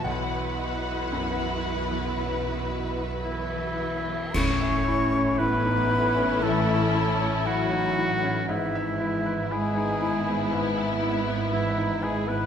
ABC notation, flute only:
X:1
M:4/4
L:1/16
Q:1/4=58
K:Bmix
V:1 name="Flute"
z12 e4 | [K:Alyd] c'4 b4 a4 f4 | e4 g6 z2 e2 g b |]